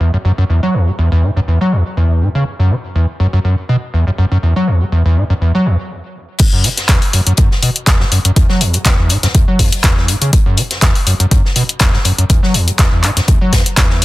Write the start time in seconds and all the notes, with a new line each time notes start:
0.00 E2
0.14 F#2
0.25 F#2
0.38 F#2
0.49 E2
0.63 F#3
0.74 E2
0.87 G#2
0.99 E2
1.12 E2
1.23 G#2
1.36 F#2
1.48 E2
1.61 F#3
1.72 E2
1.97 E2
2.22 G#2
2.35 C#3
2.59 F#2
2.71 C#3
2.95 E2
3.20 F#2
3.33 F#2
3.45 F#2
3.69 B2
3.94 E2
4.07 F#2
4.18 F#2
4.32 F#2
4.43 E2
4.56 F#3
4.67 E2
4.81 G#2
4.92 E2
5.05 E2
5.17 G#2
5.30 F#2
5.41 E2
5.55 F#3
5.66 E2
6.39 kick, closed hi-hat, crash
6.53 F#2
6.64 C#3, closed hi-hat, open hi-hat
6.77 snare, closed hi-hat
6.89 E2, kick, snare, clap, closed hi-hat
7.02 open hi-hat
7.13 F#2, closed hi-hat, open hi-hat
7.27 F#2, closed hi-hat
7.37 F#2, kick, closed hi-hat
7.51 snare
7.62 B2, closed hi-hat, open hi-hat
7.76 closed hi-hat
7.87 E2, kick, snare, clap, closed hi-hat
8.00 F#2, snare
8.12 F#2, closed hi-hat, open hi-hat
8.25 F#2, closed hi-hat
8.36 E2, kick, closed hi-hat
8.49 F#3, snare
8.61 E2, closed hi-hat, open hi-hat
8.73 G#2, closed hi-hat
8.85 E2, kick, snare, clap, closed hi-hat
8.99 E2
9.09 G#2, closed hi-hat, open hi-hat
9.23 F#2, snare, closed hi-hat
9.35 E2, kick, closed hi-hat
9.48 F#3
9.59 E2, kick, open hi-hat
9.72 closed hi-hat
9.84 E2, kick, snare, clap, closed hi-hat
9.97 snare
10.08 G#2, closed hi-hat, open hi-hat
10.21 C#3, closed hi-hat
10.33 kick, closed hi-hat
10.46 F#2
10.57 C#3, closed hi-hat, open hi-hat
10.71 snare, closed hi-hat
10.82 E2, kick, snare, clap, closed hi-hat
10.95 open hi-hat
11.07 F#2, closed hi-hat, open hi-hat
11.20 F#2, closed hi-hat
11.31 F#2, kick, closed hi-hat
11.45 snare
11.56 B2, closed hi-hat, open hi-hat
11.69 closed hi-hat
11.79 E2, kick, snare, clap, closed hi-hat
11.93 F#2, snare
12.05 F#2, closed hi-hat, open hi-hat
12.18 F#2, closed hi-hat
12.30 E2, kick, closed hi-hat
12.43 F#3, snare
12.54 E2, closed hi-hat, open hi-hat
12.68 G#2, closed hi-hat
12.79 E2, kick, snare, clap, closed hi-hat
12.92 E2
13.03 G#2, clap, closed hi-hat, open hi-hat
13.17 F#2, snare, closed hi-hat
13.28 E2, kick, closed hi-hat
13.41 F#3
13.53 E2, kick, snare, closed hi-hat, open hi-hat
13.66 closed hi-hat
13.77 E2, kick, snare, clap, closed hi-hat
13.90 snare
14.02 G#2